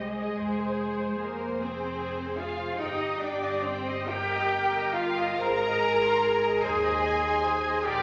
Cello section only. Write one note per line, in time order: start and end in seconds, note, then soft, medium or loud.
0.00 1.19 G#3 medium
1.19 1.58 A#3 medium
1.58 2.37 C4 medium
2.36 2.77 F4 medium
2.78 3.20 D#4 medium
3.20 3.64 D4 medium
3.64 4.08 C4 medium
4.08 4.95 G4 loud
4.95 5.40 F4 medium
5.39 6.60 A#4 loud
6.62 7.85 G#4 loud
7.84 8.03 G4 loud